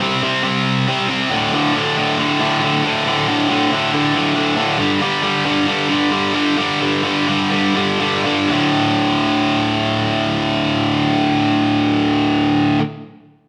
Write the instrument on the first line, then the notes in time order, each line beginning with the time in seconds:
distorted electric guitar
0.01 C3 G3 C4
0.23 C3 G3 C4
0.43 C3 G3 C4
0.88 C3 G3 C4
1.09 C3 G3 C4
1.31 D2 A2 D3
1.53 D2 A2 D3
1.75 D2 A2 D3
1.97 D2 A2 D3
2.18 D2 A2 D3
2.39 D2 A2 D3
2.61 D2 A2 D3
2.84 D2 A2 D3
3.06 D2 A2 D3
3.28 D2 A2 D3
3.49 D2 A2 D3
3.71 D2 A2 D3
3.92 D2 A2 D3
4.14 D2 A2 D3
4.34 D2 A2 D3
4.56 D2 A2 D3
4.79 G2 D3 G3
5.01 G2 D3 G3
5.23 G2 D3 G3
5.45 G2 D3 G3
5.67 G2 D3 G3
5.89 G2 D3 G3
6.11 G2 D3 G3
6.34 G2 D3 G3
6.57 G2 D3 G3
6.81 G2 D3 G3
7.03 G2 D3 G3
7.27 G2 D3 G3
7.50 G2 D3 G3
7.75 G2 D3 G3
8.00 G2 D3 G3
8.24 G2 D3 G3
8.49 D2 A2 D3